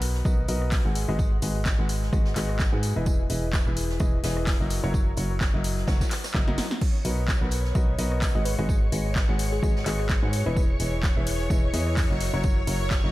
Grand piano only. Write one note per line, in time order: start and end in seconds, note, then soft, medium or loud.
0.00 0.23 B3 medium
0.00 0.23 F#4 medium
0.00 0.23 A#4 medium
0.00 0.23 B4 medium
0.00 0.23 F#5 medium
0.25 0.42 B3 medium
0.25 0.42 F#4 medium
0.25 0.42 A#4 medium
0.25 0.42 B4 medium
0.25 0.42 D#5 medium
0.49 0.82 B3 medium
0.49 0.82 F#4 medium
0.49 0.82 A#4 medium
0.49 0.82 B4 medium
0.49 0.82 D#5 loud
0.85 1.05 G#3 medium
0.85 1.05 F#4 medium
0.85 1.05 G#4 medium
0.85 1.05 B4 medium
0.85 1.05 F#5 medium
1.09 1.34 G#3 medium
1.09 1.34 F#4 medium
1.09 1.34 G#4 medium
1.09 1.34 B4 medium
1.09 1.34 D#5 loud
1.42 1.59 G#3 medium
1.42 1.59 F#4 medium
1.42 1.59 G#4 medium
1.42 1.59 B4 medium
1.42 1.59 D#5 medium
1.79 2.10 G#3 medium
1.79 2.10 F#4 medium
1.79 2.10 G#4 medium
1.79 2.10 B4 medium
1.79 2.10 F#5 medium
2.13 2.30 G#3 medium
2.13 2.30 F#4 medium
2.13 2.30 G#4 medium
2.13 2.30 B4 medium
2.13 2.30 D#5 loud
2.36 2.70 G#3 medium
2.36 2.70 F#4 medium
2.36 2.70 G#4 medium
2.36 2.70 B4 medium
2.36 2.70 D#5 loud
2.73 2.92 G#3 medium
2.73 2.92 F#4 medium
2.73 2.92 G#4 medium
2.73 2.92 B4 medium
2.73 2.92 F#5 medium
2.96 3.21 E3 medium
2.96 3.21 E4 medium
2.96 3.21 G#4 medium
2.96 3.21 B4 medium
2.96 3.21 D#5 loud
3.30 3.47 E3 medium
3.30 3.47 E4 medium
3.30 3.47 G#4 medium
3.30 3.47 B4 medium
3.30 3.47 D#5 medium
3.66 3.98 E3 medium
3.66 3.98 E4 medium
3.66 3.98 G#4 medium
3.66 3.98 B4 medium
3.66 3.98 E5 medium
4.00 4.17 E3 medium
4.00 4.17 E4 medium
4.00 4.17 G#4 medium
4.00 4.17 B4 medium
4.00 4.17 D#5 loud
4.24 4.57 E3 medium
4.24 4.57 E4 medium
4.24 4.57 G#4 medium
4.24 4.57 B4 medium
4.24 4.57 D#5 loud
4.60 4.80 F#3 medium
4.60 4.80 E4 medium
4.60 4.80 F#4 medium
4.60 4.80 A#4 medium
4.60 4.80 D#5 medium
4.84 5.09 F#3 medium
4.84 5.09 E4 medium
4.84 5.09 F#4 medium
4.84 5.09 A#4 medium
4.84 5.09 C#5 loud
5.17 5.34 F#3 medium
5.17 5.34 E4 medium
5.17 5.34 F#4 medium
5.17 5.34 A#4 medium
5.17 5.34 C#5 medium
5.54 5.85 F#3 medium
5.54 5.85 E4 medium
5.54 5.85 F#4 medium
5.54 5.85 A#4 medium
5.54 5.85 D#5 medium
5.88 6.05 F#3 medium
5.88 6.05 E4 medium
5.88 6.05 F#4 medium
5.88 6.05 A#4 medium
5.88 6.05 C#5 medium
6.34 6.45 F#3 medium
6.34 6.45 E4 medium
6.34 6.45 F#4 medium
6.34 6.45 A#4 medium
6.34 6.45 D#5 medium
6.48 6.63 F#3 loud
6.48 6.63 E4 medium
6.48 6.63 F#4 medium
6.48 6.63 A#4 medium
6.48 6.63 D#5 loud
7.05 7.22 B3 medium
7.05 7.22 F#4 medium
7.05 7.22 A#4 medium
7.05 7.22 B4 medium
7.05 7.22 D#5 medium
7.41 7.73 B3 medium
7.41 7.73 F#4 medium
7.41 7.73 A#4 medium
7.41 7.73 B4 medium
7.41 7.73 F#5 medium
7.75 7.92 B3 medium
7.75 7.92 F#4 medium
7.75 7.92 A#4 medium
7.75 7.92 B4 medium
7.75 7.92 D#5 loud
7.99 8.32 B3 medium
7.99 8.32 F#4 medium
7.99 8.32 A#4 medium
7.99 8.32 B4 medium
7.99 8.32 D#5 loud
8.35 8.55 G#3 medium
8.35 8.55 F#4 medium
8.35 8.55 G#4 medium
8.35 8.55 B4 medium
8.35 8.55 F#5 medium
8.59 8.84 G#3 medium
8.59 8.84 F#4 medium
8.59 8.84 G#4 medium
8.59 8.84 B4 medium
8.59 8.84 D#5 loud
8.92 9.09 G#3 medium
8.92 9.09 F#4 medium
8.92 9.09 G#4 medium
8.92 9.09 B4 medium
8.92 9.09 D#5 medium
9.29 9.60 G#3 medium
9.29 9.60 F#4 medium
9.29 9.60 G#4 medium
9.29 9.60 B4 medium
9.29 9.60 F#5 medium
9.63 9.80 G#3 medium
9.63 9.80 F#4 medium
9.63 9.80 G#4 medium
9.63 9.80 B4 medium
9.63 9.80 D#5 medium
9.86 10.20 G#3 medium
9.86 10.20 F#4 medium
9.86 10.20 G#4 medium
9.86 10.20 B4 medium
9.86 10.20 D#5 loud
10.23 10.42 G#3 medium
10.23 10.42 F#4 medium
10.23 10.42 G#4 medium
10.23 10.42 B4 medium
10.23 10.42 F#5 medium
10.46 10.72 E3 medium
10.46 10.71 E4 medium
10.46 10.71 G#4 medium
10.46 10.71 B4 medium
10.46 10.71 D#5 loud
10.80 10.97 E3 medium
10.80 10.97 E4 medium
10.80 10.97 G#4 medium
10.80 10.97 B4 medium
10.80 10.97 D#5 medium
11.16 11.48 E3 medium
11.16 11.48 E4 medium
11.16 11.48 G#4 medium
11.16 11.48 B4 medium
11.16 11.48 E5 medium
11.50 11.67 E3 medium
11.50 11.67 E4 medium
11.50 11.67 G#4 medium
11.50 11.67 B4 medium
11.50 11.67 D#5 medium
11.74 12.07 E3 medium
11.74 12.07 E4 medium
11.74 12.07 G#4 medium
11.74 12.07 B4 medium
11.74 12.07 D#5 loud
12.10 12.30 F#3 medium
12.10 12.30 E4 medium
12.10 12.30 F#4 medium
12.10 12.30 A#4 medium
12.10 12.30 D#5 medium
12.34 12.59 F#3 medium
12.34 12.59 E4 medium
12.34 12.59 F#4 medium
12.34 12.59 A#4 medium
12.34 12.59 C#5 loud
12.67 12.84 F#3 medium
12.67 12.84 E4 medium
12.67 12.84 F#4 medium
12.67 12.84 A#4 medium
12.67 12.84 C#5 medium
13.04 13.12 F#3 medium
13.04 13.12 E4 medium
13.04 13.12 F#4 medium
13.04 13.12 A#4 medium
13.04 13.12 D#5 medium